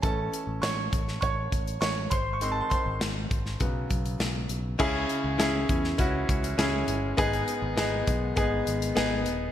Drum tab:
CC |----------------|----------------|x---------------|----------------|
HH |x-x-x-x-x-xxx-x-|x-x-x-x-x-xxx-x-|--x-x-x-x-xxx-x-|xxx-x-x-x-xxx-x-|
SD |----o--o----o---|----o--o----o---|----o--o----o---|----o-------o---|
BD |o-----o-o-o---o-|--o---o-o-o-----|o-----o-o-o-----|o-----o-o-------|